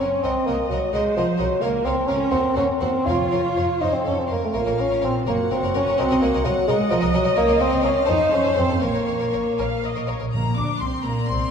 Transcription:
Already playing: C#5
0.00 C#4 A#4 F#5
0.22 C2 C4 A#4 D#5 F#5
0.46 C2 A#3 A#4 D#5 F#5
0.70 C2 F#3 A#4 D#5 F#5
0.92 C2 G#3 A#4 C5 D#5 F#5
1.16 C2 F3 A#4 D#5 F#5
1.38 C2 F#3 A#4 D#5 F#5
1.61 C#2 A#3 A#4 C#5 F5
1.85 C#2 C4 A#4 C#5 F5
2.07 C#2 C#4 A#4 C#5 F5
2.31 D#2 C4 F#4 C5 F#5
2.56 D#2 C#4 F#4 C5 F#5
2.81 D#2 C4 F#4 C5 F#5
3.06 F2 F4 A#4 C#5 F5
3.31 F2 A#4 C#5 F5
3.56 F2 A#4 C#5 F5
3.79 F2 D#4 C5 F5
3.93 C4
4.03 F2 C#4 A4 F5
4.19 C4
4.29 F2 A#3 A#4 F5
4.33 A#3
4.45 A3
4.54 A#1 A#3 F4 A#4 C#5 F5
4.58 A#3
4.67 A#1 A#4 C#5
4.78 A#1 C#4 A#4 C#5
4.91 A#1 A#4 C#5
5.01 A#1 C4 A#4 C#5
5.26 F#1 A#3 F#4 A#4 C#5 F#5
5.51 F#1 C4 A#4 C#5
5.63 F#1 A#4 C#5
5.75 F#1 C#4 A#4 C#5
5.87 F#1 A#4 C#5
5.98 C2 C4 A#4 D#5
6.10 C2 A#4 D#5
6.22 C2 A#3 A#4 D#5
6.33 C2 A#4 D#5
6.45 C2 F#3 A#4 D#5
6.68 C2 G#3 A#4 D#5
6.90 C2 F3 A#4 D#5
7.01 C2 A#4 D#5
7.14 C2 F#3 A#4 D#5
7.24 C2 A#4 D#5
7.36 C#2 A#3 A#4 C#5 F5
7.48 C#2 A#4 C#5
7.59 C#2 C4 A#4 C#5
7.70 C#2 A#4 C#5
7.82 C#2 C#4 A#4 C#5
8.06 F2 D#4 A4 C5
8.31 F2 C#4 A4 C5
8.44 F2 A4 C5
8.55 F2 C4 A4 C5
8.69 F2 A4 C5
8.80 A#1 A#3 A#4 C#5
8.84 A#3
8.94 A#1 A#4 C#5
9.08 A#1 A#4 C#5
9.19 A#1 A#4 C#5
9.32 A#1 A#4 C#5
9.58 A#1 A#4 C#5 F5
9.83 A#1 A#4 C#5 D#5
9.95 A#1 A#4 C#5
10.07 A#1 A#4 C#5
10.19 A#1 A#4 C#5
10.31 A#1 A#2 A#3 A#5
10.35 A#3 A#5
10.55 D2 D4 D6
10.59 D4
10.79 C2 C4 C6
11.03 A#1 A#3 D5 A#5
11.27 C2 C4 C6

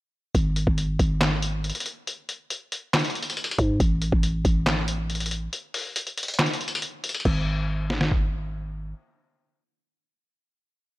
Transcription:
0.35 G#1, kick, closed hi-hat
0.56 closed hi-hat
0.67 G#1, kick
0.78 closed hi-hat
0.99 G#1, kick, closed hi-hat
1.21 snare, clap, closed hi-hat
1.42 closed hi-hat
1.64 closed hi-hat
1.70 closed hi-hat
1.75 closed hi-hat
1.80 closed hi-hat
1.86 closed hi-hat
2.07 closed hi-hat
2.29 closed hi-hat
2.50 closed hi-hat
2.72 closed hi-hat
2.94 snare, clap, closed hi-hat
2.99 closed hi-hat
3.04 closed hi-hat
3.10 closed hi-hat
3.15 closed hi-hat
3.23 closed hi-hat
3.30 closed hi-hat
3.37 closed hi-hat
3.44 closed hi-hat
3.51 closed hi-hat
3.59 G#2, kick, closed hi-hat
3.80 A1, kick, closed hi-hat
4.02 closed hi-hat
4.12 A1, kick
4.23 closed hi-hat
4.45 A1, kick, closed hi-hat
4.66 snare, clap, closed hi-hat
4.88 closed hi-hat
5.10 closed hi-hat
5.15 closed hi-hat
5.20 closed hi-hat
5.26 closed hi-hat
5.31 closed hi-hat
5.53 closed hi-hat
5.74 open hi-hat
5.96 closed hi-hat
6.07 closed hi-hat
6.18 closed hi-hat
6.23 closed hi-hat
6.28 closed hi-hat
6.34 closed hi-hat
6.39 snare, clap, closed hi-hat
6.46 closed hi-hat
6.53 closed hi-hat
6.61 closed hi-hat
6.68 closed hi-hat
6.75 closed hi-hat
6.82 closed hi-hat
7.04 closed hi-hat
7.09 closed hi-hat
7.15 closed hi-hat
7.20 closed hi-hat
7.25 G#1, kick, crash
7.90 snare
8.01 snare
8.12 kick

